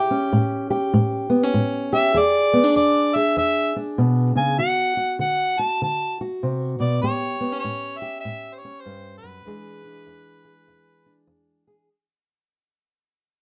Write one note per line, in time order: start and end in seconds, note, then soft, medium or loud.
0.00 0.29 A2 medium
0.00 0.69 G4 medium
0.11 1.29 C#4 medium
0.33 0.89 A2 medium
0.70 1.91 G4 medium
0.94 1.50 A2 medium
1.30 1.43 B3 medium
1.43 2.15 C#4 soft
1.54 2.10 A2 medium
1.93 2.13 G4 medium
1.93 2.20 E5 medium
2.14 2.71 E2 medium
2.14 3.14 G#4 medium
2.19 2.76 D5 medium
2.53 2.64 B3 medium
2.64 3.74 D4 soft
2.76 3.32 E2 medium
2.76 3.17 D5 medium
3.16 4.57 G#4 medium
3.16 3.37 E5 medium
3.37 3.93 E2 medium
3.37 3.73 E5 medium
3.76 4.57 D4 medium
3.98 4.35 B2 medium
4.36 4.59 C#3 medium
4.36 4.58 G#5 medium
4.58 5.15 D3 medium
4.58 4.96 F#4 medium
4.58 5.16 F#5 medium
4.97 5.58 F#4 medium
5.19 5.76 D3 medium
5.19 5.61 F#5 medium
5.59 6.19 F#4 medium
5.59 5.82 A5 loud
5.82 6.37 D3 medium
5.82 6.17 A5 medium
6.21 7.01 F#4 medium
6.43 6.79 C3 medium
6.80 7.03 B2 medium
6.80 7.01 D5 medium
7.02 7.59 A2 medium
7.02 8.01 G4 medium
7.02 7.59 C#5 medium
7.41 7.52 B3 medium
7.52 8.63 C#4 soft
7.59 7.99 C#5 loud
7.64 8.20 A2 medium
7.98 8.20 E5 loud
8.02 9.44 G4 medium
8.20 8.55 E5 loud
8.25 8.81 A2 medium
8.54 8.60 C5 medium
8.59 8.82 C#5 medium
8.65 9.45 C#4 medium
8.81 9.17 C5 medium
8.85 9.23 G2 medium
9.18 11.23 B4 medium
9.23 9.45 F#2 medium
9.45 10.02 E2 medium
9.45 11.88 E3 medium
9.45 11.88 G#3 medium
9.45 9.84 D4 medium
9.45 10.44 G#4 medium
9.85 11.05 D4 medium
10.06 10.64 E2 medium
10.45 11.66 G#4 medium
10.68 11.25 E2 medium
11.06 11.88 D4 medium
11.27 11.85 E2 medium
11.67 11.88 G#4 medium